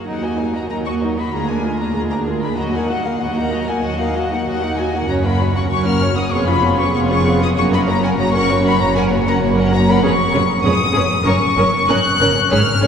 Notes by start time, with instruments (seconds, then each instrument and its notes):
0.06 double bass section D#2, cello section D#2, viola section F#3 D#4, violin section D#4 A#4 F#5
0.22 viola section A#3 F#4, violin section F#4 D#5 G#5
0.38 viola section F#3 D#4, violin section D#4 A#4
0.54 viola section A#3 F#4, violin section F#4 D#5 A#5
0.70 double bass section D#2, cello section D#2, viola section F#3 D#4, violin section D#4 A#4 A#5
0.85 viola section A#3 F#4, violin section F#4 D#5 C#6
1.02 viola section F#3 D#4, violin section D#4 A#4
1.17 viola section A#3 F#4, violin section F#4 D#5 B5
1.32 double bass section D2, cello section D2, viola section G#3 F4, violin section G#4 A#4 A#5
1.48 viola section A#3 D4, violin section G#4 A#4 G#5
1.64 viola section G#3 F4, violin section G#4 A#4
1.79 viola section A#3 D4, violin section G#4 A#4 A#5
1.95 double bass section D2, cello section D2, viola section G#3 F4, violin section G#4 A#4 A#5
2.11 viola section A#3 D4, violin section G#4 A#4 A#5
2.26 viola section G#3 F4, violin section G#4 A#4
2.42 viola section A#3 D4, violin section G#4 A#4 B5
2.56 double bass section D#2, cello section D#2, viola section F#3 F#4, violin section F#4 D#5 A#5
2.74 viola section A#3 D#4, violin section A#4 F#5 G#5
2.89 viola section F#3 F#4, violin section F#4 D#5 F#5
3.04 viola section A#3 D#4, violin section A#4 F5 F#5
3.20 double bass section D#2, cello section D#2, viola section F#3 F#4, violin section F#4 D#5 F#5
3.36 viola section A#3 D#4, violin section A#4 F#5 A#5
3.52 viola section F#3 F#4, violin section F#4 D#5
3.68 viola section A#3 D#4, violin section A#4 F#5 G#5
3.83 double bass section D#2, cello section D#2, viola section F#3 F#4, violin section F#4 D#5 F#5
3.98 viola section A#3 D#4, violin section A#4 F5 F#5
4.15 viola section F#3 F#4, violin section F#4 D#5
4.30 viola section A#3 D#4, violin section A#4 F#5
4.45 double bass section D#2, cello section D#2, viola section F#3 F#4, violin section F#4 D#5 F#5
4.62 viola section A#3 D#4, violin section A#4 F#5
4.77 viola section F#3 F#4, violin section F#4 D#5 G#5
4.93 viola section A#3 D#4, violin section A#4 F#5
5.07 double bass section F#1, cello section F#2, viola section C#4 F#4, violin section C#5 A#5
5.24 viola section A#3 C#4, violin section A#4 F#5 B5
5.39 viola section C#4 F#4, violin section C#5
5.55 viola section A#3 C#4, violin section A#4 F#5 C#6
5.69 double bass section F#1, cello section F#2, viola section C#4 F#4, violin section C#5 C#6
5.86 viola section A#3 C#4, violin section A#4 F#5 F6
6.00 viola section C#4 F#4, violin section C#5
6.16 viola section A#3 C#4, violin section A#4 F#5 D#6
6.32 double bass section F1, cello section F2, viola section B3 G#4, violin section F4 C#5 C#6
6.47 viola section C#4 F4, violin section G#4 B4 B5
6.62 viola section B3 G#4, violin section F4 C#5
6.78 viola section C#4 F4, violin section G#4 B4 C#6
6.93 double bass section F1, cello section F2, viola section B3 G#4, violin section F4 C#5 C#6
7.09 viola section C#4 F4, violin section G#4 B4 C#6
7.25 viola section B3 G#4, violin section F4 C#5
7.41 viola section C#4 F4, violin section G#4 B4 D#6
7.55 double bass section F#1, cello section F#2, viola section A#3 F#4, violin section C#5 C#6
7.72 viola section C#4 A#4, violin section A#4 F#5 B5
7.87 viola section A#3 F#4, violin section C#5 A#5
8.03 viola section C#4 A#4, violin section A#4 F#5 G#5
8.17 double bass section F#1, cello section F#2, viola section A#3 F#4, violin section C#5 A#5
8.33 viola section C#4 A#4, violin section A#4 F#5 C#6
8.49 viola section A#3 F#4, violin section C#5
8.63 viola section C#4 A#4, violin section A#4 F#5 B5
8.79 double bass section F#1, cello section F#2, viola section A#3 F#4, violin section C#5 A#5
8.96 viola section C#4 A#4, violin section A#4 F#5 G#5
9.11 viola section A#3 F#4, violin section C#5
9.26 viola section C#4 A#4, violin section A#4 F#5 A#5
9.41 double bass section F#1, cello section F#2, viola section A#3 F#4, violin section C#5
9.56 viola section C#4 A#4, violin section A#4 F#5
9.71 viola section A#3 F#4, violin section C#5 A#5
9.87 viola section C#4 A#4, violin section A#4 F#5 B5
10.02 double bass section F1, cello section F2, viola section C#4 G#4, violin section B4 C#5 C#6
10.33 double bass section F1, cello section F2, viola section C#4 G#4, violin section B4 C#5
10.64 double bass section F1, cello section F2, viola section C#4 G#4, violin section B4 C#5 D#6
10.94 double bass section F1, cello section F2, viola section C#4 G#4, violin section B4 C#5
11.24 double bass section F#1, cello section F#2, viola section C#4 A#4, violin section A#4 C#5 C#6
11.56 double bass section F#1, cello section F#2, viola section C#4 A#4, violin section A#4 C#5
11.88 double bass section F#1, cello section F#2, viola section C#4 A#4, violin section A#4 C#5 F#6
12.20 double bass section F#1, cello section F#2, viola section C#4 A#4, violin section A#4 C#5
12.50 double bass section G#1, cello section G#2, viola section C#4 G#4, violin section B4 C#5 F6
12.81 double bass section G#1, cello section G#2, viola section C#4 G#4, violin section B4 C#5